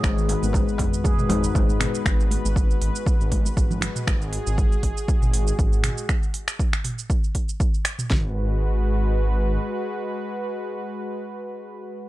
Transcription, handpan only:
X:1
M:4/4
L:1/16
Q:"Swing 16ths" 1/4=119
K:G#m
V:1 name="Handpan" clef=bass
G, D, z B, G, z3 G G, D z G, z B, z | z16 | z16 | z16 |
z16 | z16 |]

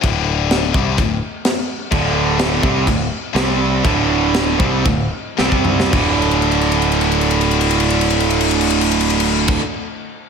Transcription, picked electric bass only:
X:1
M:4/4
L:1/8
Q:1/4=116
K:Cmix
V:1 name="Picked electric bass" clef=bass
D,,,3 C,, D,,, z3 | D,,,3 C,, D,,, z C,,2 | D,,,3 C,, D,,, z C,,2 | D,,,8- |
D,,,4- D,,, z3 |]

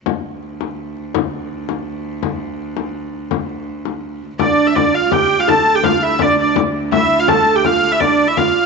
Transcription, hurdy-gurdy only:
X:1
M:3/4
L:1/16
Q:1/4=166
K:Dm
V:1 name="Hurdy-gurdy"
z12 | z12 | z12 | z12 |
d3 e d2 f2 g3 f | a3 g f2 e2 d2 d2 | z4 e3 f a3 g | f3 e d3 e f4 |]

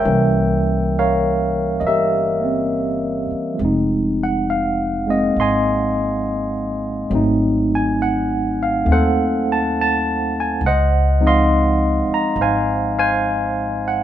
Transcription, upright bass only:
X:1
M:4/4
L:1/8
Q:"Swing" 1/4=68
K:Db
V:1 name="Upright bass" clef=bass
C,,4 =G,,,3 z | F,,,4 A,,,4 | A,,,4 E,,4 | D,,3 z A,,,4 |]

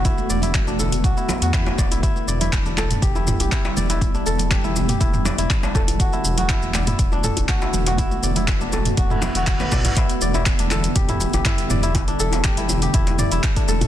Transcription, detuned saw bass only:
X:1
M:4/4
L:1/16
Q:1/4=121
K:Em
V:1 name="Detuned saw bass" clef=bass
z2 E,,,2 z E,,,3 B,,, z2 E,,2 z E,,,2 | z2 E,,,2 z E,,,2 z E,,,2 z E,,, z2 E,,,2 | z2 E,,,2 z E,,,2 z E,,,2 z E,,, z2 E,,,2 | z2 E,,,2 z E,,,2 z E,,,2 z E,,, z2 E,,,2 |
z2 E,,,2 z E,,,2 z E,,,2 z E,,,2 z B,,, z | z2 E,,,2 z E,,,2 z E,,,2 z E,,, z2 E,,,2 | z2 E,,,2 z E,,,2 z E,,,2 z E,,, z2 E,,,2 |]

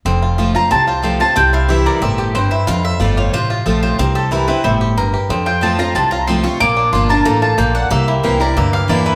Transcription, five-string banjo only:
X:1
M:4/4
L:1/8
Q:1/4=183
K:F
V:1 name="Five-string banjo"
C F F F C F C F | C E G B C G C E | F2 F F F F F F | C G E C E G B G |
C F C F C F C F | B, D F B B, F B, D | B, E G B B, G B, E |]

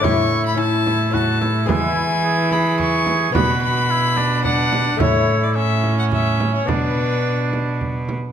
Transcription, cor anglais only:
X:1
M:3/4
L:1/8
Q:1/4=109
K:Bdor
V:1 name="Cor anglais"
E4 F E | E z G G3 | F2 E D D2 | E2 C4 |
D4- D z |]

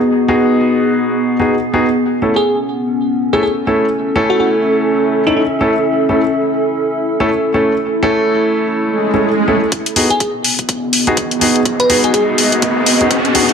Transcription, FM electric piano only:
X:1
M:4/4
L:1/16
Q:"Swing 16ths" 1/4=124
K:G#phr
V:1 name="FM electric piano"
z16 | z3 G2 z6 G G z3 | z3 F F z6 D D z3 | z16 |
z16 | z3 G2 z8 z3 | z B2 G G z8 z3 |]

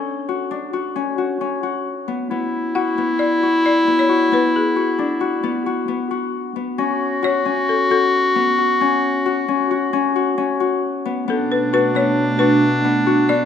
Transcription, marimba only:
X:1
M:5/4
L:1/16
Q:1/4=134
K:Bdor
V:1 name="Marimba"
A4 z16 | z4 f4 d4 d3 c3 B2 | G12 z8 | z4 c4 A2 A8- A2- |
A16 z4 | A2 B2 B2 c4 B8 d2 |]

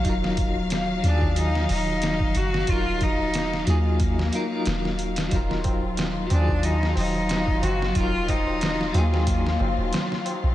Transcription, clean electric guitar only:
X:1
M:4/4
L:1/16
Q:"Swing 16ths" 1/4=91
K:Ebm
V:1 name="Clean electric guitar"
[G,EFB]6 [E,G,FA]8- [E,G,FA]2 | [G,EFB]6 [G,EFA]4 [G,EFB] [G,EFB]4- [G,EFB] | [G,EFB]6 [E,G,FA]8- [E,G,FA]2 | [G,EFB]6 [G,EFA]8- [G,EFA]2 |]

